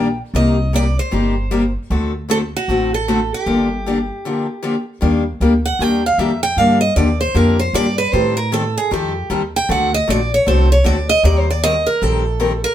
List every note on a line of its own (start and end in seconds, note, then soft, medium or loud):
0.00 0.19 A#1 medium
0.00 0.17 G5 medium
0.34 0.96 C2 medium
0.34 0.56 C3 medium
0.34 0.56 G3 medium
0.34 0.56 A#3 medium
0.34 0.56 D#4 medium
0.34 0.56 G4 medium
0.34 0.72 D#5 medium
0.73 0.84 C3 medium
0.73 0.85 G3 medium
0.73 0.85 A#3 medium
0.73 0.85 D#4 medium
0.73 0.86 G4 medium
0.73 0.99 D5 medium
0.99 1.72 C5 medium
1.11 1.75 G1 medium
1.11 1.33 C3 medium
1.11 1.33 G3 medium
1.11 1.33 A#3 medium
1.11 1.34 D#4 medium
1.11 1.34 G4 medium
1.51 1.62 C3 medium
1.51 1.62 G3 medium
1.51 1.62 A#3 medium
1.51 1.63 D#4 medium
1.51 1.63 G4 medium
1.90 2.53 D2 medium
1.90 2.11 D3 medium
1.90 2.11 A3 medium
1.90 2.12 C4 medium
1.90 2.12 F#4 medium
1.90 2.12 A4 medium
2.29 2.40 D3 medium
2.29 2.41 A3 medium
2.29 2.41 C4 medium
2.29 2.41 F#4 medium
2.29 2.41 A4 medium
2.29 2.37 A4 loud
2.56 2.94 F#4 medium
2.68 3.31 A1 medium
2.68 2.90 D3 medium
2.68 2.90 A3 medium
2.68 2.90 C4 medium
2.68 2.90 F#4 medium
2.68 2.91 A4 medium
2.94 3.34 A4 medium
3.08 3.19 D3 medium
3.08 3.19 A3 medium
3.08 3.19 C4 medium
3.08 3.19 F#4 medium
3.08 3.19 A4 medium
3.34 4.85 G4 medium
3.46 4.09 G1 medium
3.46 3.67 D3 medium
3.46 3.67 F3 medium
3.46 3.68 A#3 medium
3.46 3.68 D4 medium
3.46 3.68 G4 medium
3.86 3.97 D3 medium
3.86 3.97 F3 medium
3.86 3.97 A#3 medium
3.86 3.98 D4 medium
3.86 3.98 G4 medium
4.25 4.46 D3 medium
4.25 4.46 F3 medium
4.25 4.46 A#3 medium
4.25 4.46 D4 medium
4.25 4.46 G4 medium
4.63 4.74 D3 medium
4.63 4.74 F3 medium
4.63 4.74 A#3 medium
4.63 4.75 D4 medium
4.63 4.75 G4 medium
5.01 5.33 D#2 medium
5.01 5.22 D#3 medium
5.01 5.23 G3 medium
5.01 5.23 A#3 medium
5.01 5.23 D4 medium
5.01 5.23 G4 medium
5.40 5.74 D2 medium
5.40 5.52 D#3 medium
5.40 5.52 G3 medium
5.40 5.53 A#3 medium
5.40 5.53 D4 medium
5.40 5.53 G4 medium
5.66 5.82 F#5 medium
5.79 6.13 D#2 medium
5.79 6.01 D#3 medium
5.79 6.01 G3 medium
5.79 6.01 A#3 medium
5.79 6.02 D4 medium
5.79 6.02 G4 medium
5.79 6.04 G5 medium
6.06 6.19 F5 medium
6.18 6.51 F2 medium
6.18 6.30 D#3 medium
6.18 6.30 G3 medium
6.18 6.30 A#3 medium
6.18 6.30 D4 medium
6.18 6.31 G4 medium
6.18 6.42 E5 medium
6.43 6.58 G5 loud
6.57 6.88 G2 medium
6.57 6.79 D3 medium
6.57 6.79 F3 medium
6.57 6.79 A#3 medium
6.57 6.79 D4 medium
6.57 6.80 G4 medium
6.57 6.80 F5 medium
6.81 6.96 D#5 medium
6.96 7.29 D#2 medium
6.96 7.08 D3 medium
6.96 7.08 F3 medium
6.96 7.08 A#3 medium
6.96 7.08 D4 medium
6.96 7.08 G4 medium
6.96 7.20 D5 medium
7.21 7.35 C5 medium
7.34 7.68 F2 medium
7.34 7.56 D3 medium
7.34 7.56 F3 medium
7.34 7.56 A#3 medium
7.34 7.56 D4 medium
7.34 7.56 G4 medium
7.34 7.59 A#4 medium
7.59 7.74 C5 medium
7.73 8.07 G2 medium
7.73 7.85 D3 medium
7.73 7.86 F3 loud
7.73 7.85 A#3 medium
7.73 7.86 D4 loud
7.73 7.86 G4 medium
7.73 7.98 D5 loud
7.98 8.13 B4 medium
8.13 8.75 A2 medium
8.13 8.34 D#3 medium
8.13 8.34 G3 medium
8.13 8.34 C4 medium
8.13 8.34 G4 medium
8.13 8.35 A4 medium
8.13 8.36 C5 medium
8.37 8.51 A#4 medium
8.52 8.63 D#3 medium
8.52 8.63 G3 medium
8.52 8.63 C4 medium
8.52 8.63 G4 medium
8.52 8.64 A4 medium
8.52 8.76 A4 medium
8.78 8.91 G#4 medium
8.91 9.24 F2 medium
8.91 9.12 D#3 medium
8.91 9.12 G3 medium
8.91 9.12 C4 medium
8.91 9.12 G4 medium
8.91 9.28 G4 medium
8.91 9.12 A4 medium
9.30 9.63 D#2 medium
9.30 9.41 D#3 medium
9.30 9.41 G3 medium
9.30 9.41 C4 medium
9.30 9.41 G4 medium
9.30 9.41 A4 medium
9.56 9.70 G5 loud
9.69 10.00 D2 loud
9.69 9.89 D3 medium
9.69 9.90 A3 medium
9.69 9.90 C4 medium
9.69 9.90 F#4 medium
9.69 9.90 A4 medium
9.69 9.93 F#5 medium
9.94 10.08 D#5 medium
10.07 10.41 A#1 medium
10.07 10.19 D3 medium
10.07 10.18 A3 medium
10.07 10.19 C4 medium
10.07 10.19 F#4 medium
10.07 10.19 A4 medium
10.07 10.32 D5 medium
10.34 10.47 C#5 medium
10.46 10.80 C2 medium
10.46 10.67 D3 medium
10.46 10.67 A3 medium
10.46 10.68 C4 medium
10.46 10.68 F#4 medium
10.46 10.68 A4 medium
10.46 10.70 C5 medium
10.72 10.86 C#5 medium
10.84 11.18 D2 medium
10.84 10.96 D3 medium
10.84 10.96 A3 medium
10.84 10.96 C4 medium
10.84 10.96 F#4 medium
10.84 10.96 A4 medium
10.84 11.09 D5 medium
11.09 11.24 D#5 loud
11.23 11.86 D#2 loud
11.23 11.44 D#3 medium
11.23 11.45 G3 medium
11.23 11.45 C4 medium
11.23 11.45 G4 medium
11.23 11.45 A#4 medium
11.23 11.39 D5 medium
11.39 11.50 C5 medium
11.50 11.63 D5 medium
11.63 11.74 D#3 medium
11.63 11.74 G3 medium
11.63 11.75 C4 medium
11.63 11.75 G4 medium
11.63 11.75 A#4 medium
11.63 11.86 D#5 loud
11.86 12.03 A#4 medium
12.02 12.64 A#1 medium
12.02 12.22 D#3 medium
12.02 12.23 G3 medium
12.02 12.23 C4 medium
12.02 12.23 G4 medium
12.02 12.64 A4 medium
12.02 12.23 A#4 medium
12.40 12.51 D#3 medium
12.40 12.51 G3 medium
12.40 12.51 C4 medium
12.40 12.52 G4 medium
12.40 12.52 A#4 medium
12.64 12.74 A#4 medium